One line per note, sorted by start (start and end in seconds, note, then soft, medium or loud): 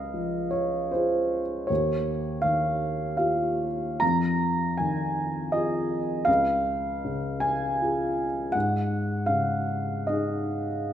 0.00 1.66 C#2 soft
0.00 0.52 D#5 medium
0.00 1.72 F5 medium
0.14 1.40 F3 soft
0.51 0.91 C#5 medium
0.91 1.67 F4 soft
0.91 1.67 G#4 soft
0.91 1.69 C5 medium
1.67 3.98 D#2 soft
1.67 2.44 C#5 medium
2.42 3.67 D#3 soft
2.42 3.16 F5 medium
3.17 3.98 F4 soft
3.17 3.98 G4 soft
3.17 4.01 F5 medium
4.00 6.24 F2 soft
4.00 4.78 A#5 medium
4.78 5.98 D#3 soft
4.78 5.53 G#5 medium
5.52 6.24 F4 soft
5.52 6.24 G#4 soft
5.52 6.27 D#5 medium
6.25 8.51 C#2 soft
6.25 7.41 F5 medium
7.05 8.26 C#3 soft
7.40 7.79 G#5 medium
7.82 8.52 F4 soft
7.82 8.52 G#4 soft
8.52 10.93 G#2 medium
8.52 9.28 F#5 medium
9.26 10.65 C#3 soft
9.26 10.10 F5 medium
10.07 10.93 D#4 soft
10.07 10.93 G#4 soft
10.07 10.93 D#5 medium